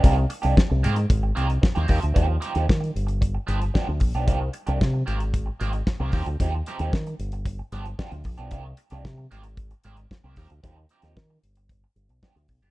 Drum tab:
HH |x-xx--xxx-xx-xox|x-xx-xxxx-xx--ox|x-xx--xxx-xx--ox|x-xx-xxxx-xx-xox|
SD |----o-------o---|----o-------o---|----o-------o---|----o-------o---|
BD |o---o---o---o-o-|o---o---o---o-o-|o---o---o---o-o-|o---o---o---o-o-|

HH |x-xx--xxxxxx--ox|x-xx--xxx-xx-xox|
SD |----o-------o---|---oo-------o---|
BD |o---o---o---o-o-|o---o---o---o-o-|